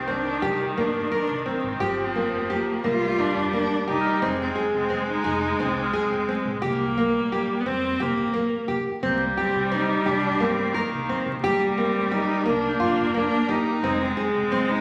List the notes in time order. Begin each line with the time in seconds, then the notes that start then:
Already playing: C2 D#3 C4
0.04 C4 G6
0.10 D4
0.42 C2 G3 G4
0.77 G2 A#3 D4
1.12 D4 A#4
1.29 C2
1.46 C4
1.64 G#1
1.80 G1 F3 G4
2.15 A#3
2.33 F1
2.50 A#3 G4
2.83 C2 G3 A#3 F4
3.18 G1 D4 F4
3.36 F1
3.53 A#3 D4
3.87 C2 G3 D#4 G4
4.01 F6
4.22 F1 G#3 C4
4.41 C4
4.55 G#4
4.74 F1 C4
4.90 C4
5.10 D#4
5.24 F1 G#4
5.59 C2 C4
5.78 D6
5.83 F6
5.93 C4 G#4
6.11 F1
6.29 G#3 C4
6.45 A#1
6.61 C2 G3 A#3 G4
6.98 A#3
7.14 A#1
7.32 G4
7.60 B3
7.66 F2 C4
8.00 C2 A#3 G4
8.18 A#1
8.34 A#3
8.68 C3 G4
9.03 C2 G3 C4 G6
9.07 A#3
9.37 C4 G4
9.54 C2
9.71 C4 D#4
10.06 C2 D4 G4
10.40 G2 A#3 C4
10.63 C7
10.74 D#3 A#3 A#4
10.92 C2
11.09 C4
11.26 C2
11.42 G1 G3 A#3 G4
11.73 A#6
11.77 A#3 C4
11.94 F1
12.12 D#4 G4
12.44 C2 A#3
12.49 D4
12.69 G6
12.80 G1 F4
12.84 D4
12.97 F1
13.14 A#3 D4
13.49 G2 D#4 G4
13.82 F1 G#3 C4
14.03 C4
14.17 G#4
14.35 F1 C4
14.52 C4
14.70 D#4